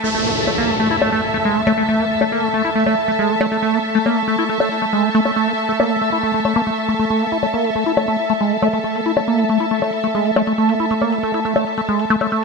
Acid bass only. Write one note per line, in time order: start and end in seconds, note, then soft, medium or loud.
0.04 0.10 A3 medium
0.15 0.27 A3 medium
0.25 0.31 A#3 medium
0.47 0.51 A3 medium
0.58 0.70 A#3 medium
0.69 0.75 A3 medium
0.80 0.89 A3 medium
0.91 0.96 E4 medium
1.02 1.10 A3 medium
1.12 1.21 A3 medium
1.34 1.38 A3 medium
1.45 1.57 G#3 medium
1.56 1.62 A3 medium
1.67 1.73 A3 loud
1.78 1.83 A3 medium
1.89 2.01 A3 medium
1.99 2.05 A#3 medium
2.21 2.25 A3 medium
2.32 2.44 A#3 medium
2.43 2.49 A3 medium
2.54 2.62 A3 medium
2.65 2.70 E4 medium
2.75 2.84 A3 medium
2.86 2.95 A3 medium
3.08 3.12 A3 medium
3.19 3.31 G#3 medium
3.30 3.36 A3 medium
3.41 3.47 A3 loud
3.52 3.57 A3 medium
3.62 3.75 A3 medium
3.73 3.79 A#3 medium
3.95 3.99 A3 medium
4.06 4.18 A#3 medium
4.17 4.23 A3 medium
4.28 4.36 A3 medium
4.38 4.44 E4 medium
4.49 4.58 A3 medium
4.60 4.69 A3 medium
4.82 4.85 A3 medium
4.93 5.05 G#3 medium
5.04 5.10 A3 medium
5.15 5.20 A3 loud
5.25 5.31 A3 medium
5.36 5.49 A3 medium
5.47 5.53 A#3 medium
5.69 5.72 A3 medium
5.80 5.92 A#3 medium
5.91 5.97 A3 medium
6.02 6.10 A3 medium
6.12 6.18 E4 medium
6.23 6.32 A3 medium
6.34 6.40 A3 medium
6.45 6.54 A3 medium
6.56 6.62 A#3 loud
6.67 6.70 A3 medium
6.88 6.94 A3 medium
6.99 7.05 A3 medium
7.10 7.23 A3 medium
7.21 7.27 A#3 medium
7.32 7.38 E4 medium
7.43 7.46 A3 medium
7.54 7.66 A#3 medium
7.65 7.70 A3 medium
7.75 7.84 A3 medium
7.86 7.92 E4 medium
7.97 8.06 A3 medium
8.08 8.17 A3 medium
8.30 8.33 A3 medium
8.41 8.53 G#3 medium
8.52 8.57 A3 medium
8.62 8.68 A3 loud
8.73 8.79 A3 medium
8.84 8.96 A3 medium
8.95 9.01 A#3 medium
9.06 9.12 E4 medium
9.17 9.20 A3 medium
9.28 9.40 A#3 medium
9.39 9.44 A3 medium
9.49 9.58 A3 medium
9.60 9.66 E4 medium
9.71 9.80 A3 medium
9.82 9.91 A3 medium
10.04 10.07 A3 medium
10.15 10.27 G#3 medium
10.25 10.31 A3 medium
10.36 10.42 A3 loud
10.47 10.53 A3 medium
10.58 10.70 A3 medium
10.69 10.75 A#3 medium
10.80 10.86 E4 medium
10.91 10.94 A3 medium
11.02 11.14 A#3 medium
11.12 11.18 A3 medium
11.23 11.32 A3 medium
11.34 11.40 E4 medium
11.45 11.54 A3 medium
11.56 11.65 A3 medium
11.78 11.81 A3 medium
11.89 12.01 G#3 medium
11.99 12.05 A3 medium
12.10 12.16 A3 loud
12.21 12.27 A3 medium
12.32 12.44 A3 medium